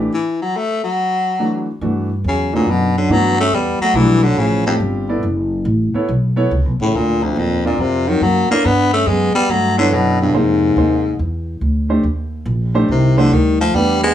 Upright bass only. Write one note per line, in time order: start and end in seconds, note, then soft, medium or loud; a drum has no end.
1.81 2.23 G2 medium
2.24 2.66 E2 medium
2.67 3.09 F#2 medium
3.09 3.51 G2 medium
3.52 3.79 E2 medium
3.80 muted upright bass stroke soft
3.94 4.35 B1 medium
4.36 4.79 A1 medium
4.80 5.22 G1 medium
5.23 5.64 F#1 medium
5.65 5.92 A1 medium
5.94 muted upright bass stroke soft
6.08 6.50 B1 medium
6.51 6.65 C#2 medium
6.65 6.79 B1 medium
6.80 6.93 A1 medium
6.94 7.35 D2 medium
7.36 7.77 D#2 medium
7.78 8.20 F2 medium
8.21 8.48 F#2 medium
8.50 muted upright bass stroke soft
8.65 9.06 G2 medium
9.06 9.33 F#2 medium
9.35 muted upright bass stroke soft
9.48 9.90 G2 medium
9.91 10.33 F#2 medium
10.34 10.75 F2 medium
10.76 11.18 D#2 medium
11.19 11.60 E2 medium
11.61 12.03 D2 medium
12.03 12.45 D#2 medium
12.46 12.87 A#1 medium
12.88 13.30 C2 medium
13.31 13.73 D2 medium
13.74 14.14 E2 medium